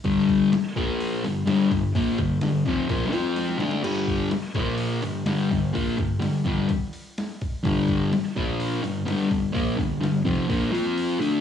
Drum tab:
CC |----------------|----------------|x---------------|----------------|
HH |o-o-o-o-o-o-o-o-|o-o-o-o-o-o-o-o-|--o-o-o-o-o-o-o-|o-o-o-o-o-o-o-o-|
SD |----o-------o---|----o-------oooo|----o-------o---|----o-------o---|
BD |o-o---o-------o-|o-o---o-o-------|--o---o-------o-|o-o---o-o-----o-|

CC |----------------|----------------|
HH |o-o-o-o-o-o-o-o-|o-o-o-o-o-o-o-o-|
SD |----o-------o---|----o-----------|
BD |o-o---o-------o-|o-o---o-o-------|